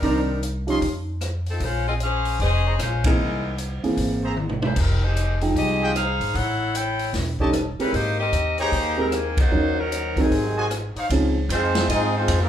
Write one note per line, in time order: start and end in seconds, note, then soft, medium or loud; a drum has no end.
0.00 0.77 C2 medium
0.00 0.25 D#3 medium
0.00 0.45 G3 medium
0.00 0.26 C4 medium
0.00 0.44 D4 medium
0.00 0.26 D4 medium
0.00 0.44 D#4 medium
0.00 0.19 D#4 medium
0.00 0.45 A#4 medium
0.00 0.19 C5 medium
0.00 0.19 D5 medium
0.00 0.19 A#5 medium
0.00 kick soft
0.00 open hi-hat soft
0.04 0.26 A#4 medium
0.43 closed hi-hat soft
0.67 0.80 F3 medium
0.67 0.80 C#4 medium
0.67 0.80 D#4 medium
0.67 0.78 F4 medium
0.67 0.81 G4 medium
0.67 0.78 C#5 medium
0.67 0.78 D#5 medium
0.67 0.78 C6 medium
0.67 open hi-hat soft
0.81 1.57 F2 medium
0.81 kick soft
0.81 open hi-hat soft
1.21 cross-stick medium
1.21 closed hi-hat soft
1.46 1.61 F3 medium
1.46 1.61 C4 medium
1.46 1.61 D#4 medium
1.46 1.61 A4 medium
1.46 open hi-hat soft
1.60 2.36 A#1 medium
1.60 kick soft
1.60 open hi-hat soft
1.64 1.88 G#3 medium
1.64 1.88 C#4 medium
1.64 1.87 F4 medium
1.64 1.88 C5 medium
1.88 1.94 C4 medium
1.88 1.94 F4 medium
1.88 1.95 G#4 medium
1.88 1.95 D#5 medium
2.00 2.39 C#4 medium
2.00 2.39 G#4 medium
2.00 2.39 C5 medium
2.00 2.39 F5 medium
2.00 closed hi-hat soft
2.25 open hi-hat soft
2.39 2.76 F1 medium
2.39 2.78 C#4 medium
2.39 2.78 G#4 medium
2.39 2.78 C5 medium
2.39 2.78 D#5 loud
2.39 kick soft
2.39 open hi-hat soft
2.65 2.75 G#4 medium
2.65 2.75 C5 medium
2.65 2.75 C#5 medium
2.65 2.75 A#5 medium
2.79 3.16 A#1 medium
2.79 3.05 G#3 medium
2.79 3.04 C#4 medium
2.79 3.05 F4 medium
2.79 3.04 C5 medium
2.79 cross-stick medium
2.79 closed hi-hat medium
3.04 3.18 E3 medium
3.04 3.55 G#3 medium
3.04 3.18 A#3 soft
3.04 3.19 C4 soft
3.04 3.55 D#4 medium
3.04 3.56 E4 medium
3.04 3.18 G#4 medium
3.04 3.56 A#4 medium
3.04 kick medium
3.04 ride medium
3.19 3.80 C2 medium
3.58 closed hi-hat soft
3.83 4.35 E3 medium
3.83 4.35 A#3 medium
3.83 4.35 C4 medium
3.83 4.35 G#4 medium
3.83 muted upright bass stroke soft
3.83 open hi-hat soft
3.97 4.73 G#1 medium
3.97 kick soft
3.97 open hi-hat soft
4.23 4.33 G#4 medium
4.23 4.33 C5 medium
4.23 4.33 E5 medium
4.23 4.33 A#5 loud
4.37 high tom soft
4.49 mid tom medium
4.62 4.78 A#3 medium
4.62 4.77 E4 medium
4.62 4.78 G#4 medium
4.62 4.77 C5 medium
4.62 mid tom medium
4.76 5.52 F1 medium
4.76 5.04 G3 medium
4.76 5.04 C4 medium
4.76 5.03 D#4 medium
4.76 5.04 A#4 medium
4.76 kick medium
4.76 crash medium
5.04 5.43 G#3 medium
5.04 5.43 D#4 medium
5.04 5.43 G4 medium
5.04 5.43 C5 medium
5.16 closed hi-hat soft
5.41 5.93 F3 medium
5.41 5.93 G#3 medium
5.41 5.93 D#4 medium
5.41 5.93 G5 medium
5.41 open hi-hat soft
5.55 6.17 C2 medium
5.55 5.94 C4 medium
5.55 5.94 G4 medium
5.55 5.94 G#4 medium
5.55 5.94 D#5 loud
5.55 kick soft
5.55 open hi-hat soft
5.81 5.91 F4 medium
5.81 5.91 G#4 medium
5.81 5.91 D#5 medium
5.81 5.91 G5 medium
5.95 6.33 D#4 medium
5.95 6.33 G#4 medium
5.95 6.33 C5 medium
5.95 6.33 F5 loud
5.95 cross-stick medium
5.95 closed hi-hat soft
6.20 6.34 G#1 medium
6.20 open hi-hat soft
6.34 7.10 A1 medium
6.34 6.75 E4 medium
6.34 6.75 A4 medium
6.34 6.74 C#5 medium
6.34 6.75 F#5 loud
6.34 kick soft
6.34 open hi-hat soft
6.75 7.15 E4 medium
6.75 7.15 A4 medium
6.75 7.15 C#5 medium
6.75 7.15 G5 medium
6.75 closed hi-hat medium
6.99 open hi-hat soft
7.13 7.75 E1 medium
7.13 kick soft
7.13 snare soft
7.13 open hi-hat soft
7.39 7.53 G3 medium
7.39 7.53 C#4 medium
7.39 7.54 D#4 medium
7.39 7.49 G4 medium
7.39 7.53 A4 medium
7.39 7.50 C#5 medium
7.39 7.50 D#5 medium
7.39 7.49 A5 medium
7.39 kick medium
7.53 cross-stick medium
7.53 closed hi-hat medium
7.78 7.94 G3 medium
7.78 7.92 G#3 medium
7.78 7.93 C4 soft
7.78 7.94 C#4 medium
7.78 7.94 E4 medium
7.78 7.93 G4 medium
7.78 7.93 A#4 medium
7.78 7.94 B4 medium
7.78 muted upright bass stroke soft
7.78 open hi-hat soft
7.93 8.30 G#1 medium
7.93 8.20 A#3 medium
7.93 8.20 D#4 medium
7.93 8.19 G4 medium
7.93 8.20 C5 loud
7.93 kick soft
7.93 open hi-hat soft
8.20 8.57 C4 medium
8.20 8.56 G4 medium
8.20 8.57 A#4 medium
8.20 8.57 D#5 medium
8.32 8.70 D#2 medium
8.32 closed hi-hat medium
8.58 8.73 A#3 medium
8.58 8.72 D#4 medium
8.58 8.72 G4 medium
8.58 9.10 G#4 loud
8.58 9.10 C5 medium
8.58 8.72 C#5 medium
8.58 9.10 G5 medium
8.58 9.10 A#5 loud
8.58 open hi-hat soft
8.72 9.48 D#2 medium
8.72 9.00 D#4 medium
8.72 8.99 G4 medium
8.72 kick soft
8.72 open hi-hat soft
8.76 9.00 A#3 medium
8.76 9.00 C5 loud
8.97 9.13 G3 medium
8.97 9.11 G#3 medium
8.97 9.11 C4 medium
8.97 9.13 C4 medium
8.97 9.13 D#4 medium
8.97 9.11 G4 medium
8.97 9.11 A#4 medium
8.97 9.13 A#4 medium
9.12 9.39 D#3 medium
9.12 9.39 A#3 medium
9.12 9.39 C4 medium
9.12 9.39 G#4 medium
9.12 cross-stick medium
9.12 closed hi-hat soft
9.37 9.79 A#3 medium
9.37 9.79 D#4 medium
9.37 9.78 F#4 medium
9.37 9.78 C5 medium
9.37 kick medium
9.37 ride medium
9.51 10.27 D#2 medium
9.51 9.74 F#3 medium
9.51 9.75 C#4 soft
9.51 9.75 D#4 medium
9.51 9.75 A#4 medium
9.79 10.18 F#3 medium
9.79 10.18 C#4 medium
9.79 10.18 D#4 medium
9.79 10.18 A#4 medium
9.92 closed hi-hat medium
10.16 10.72 C3 medium
10.16 10.72 D#3 medium
10.16 10.30 F#3 medium
10.16 10.72 G#3 medium
10.16 10.30 C4 medium
10.16 10.30 D#4 medium
10.16 10.30 A#4 medium
10.16 kick medium
10.16 open hi-hat soft
10.21 10.73 F#3 medium
10.21 10.73 C4 medium
10.21 10.73 D#4 medium
10.21 10.73 G#4 medium
10.31 10.92 G#1 medium
10.31 kick soft
10.31 open hi-hat soft
10.56 10.66 F#4 medium
10.56 10.67 C5 medium
10.56 10.66 D#5 medium
10.56 10.66 G#5 medium
10.71 cross-stick medium
10.71 closed hi-hat soft
10.95 11.06 D#4 medium
10.95 11.06 C5 medium
10.95 11.06 C#5 medium
10.95 11.06 F5 medium
10.95 muted upright bass stroke soft
10.95 open hi-hat soft
11.10 11.48 C#2 medium
11.10 11.34 F3 medium
11.10 11.34 C4 medium
11.10 11.34 C#4 medium
11.10 11.34 D#4 medium
11.10 11.34 G#4 medium
11.10 kick soft
11.10 ride medium
11.49 11.88 F2 loud
11.49 11.88 F3 medium
11.49 11.88 G#3 medium
11.49 11.87 C4 medium
11.49 11.88 D#4 medium
11.49 11.88 F4 medium
11.49 11.88 C5 loud
11.49 kick soft
11.49 hi-hat pedal soft
11.49 ride medium
11.75 snare medium
11.75 ride medium
11.89 12.27 G#2 medium
11.89 12.15 G#3 medium
11.89 12.14 C4 medium
11.89 12.15 C4 medium
11.89 12.15 D#4 medium
11.89 12.14 F4 medium
11.89 12.14 G#4 loud
11.89 12.14 D#5 loud
11.89 kick soft
11.89 ride medium
12.16 12.41 F3 medium
12.16 12.41 G#3 medium
12.16 12.41 C4 medium
12.16 12.41 D#4 medium
12.16 12.41 F4 medium
12.16 12.41 C5 medium
12.28 12.49 F2 medium
12.28 kick soft
12.28 hi-hat pedal medium
12.28 ride medium
12.42 12.49 F#3 medium
12.42 12.49 A#3 medium
12.42 12.49 C4 medium
12.42 12.49 D#4 medium
12.42 12.49 A#4 loud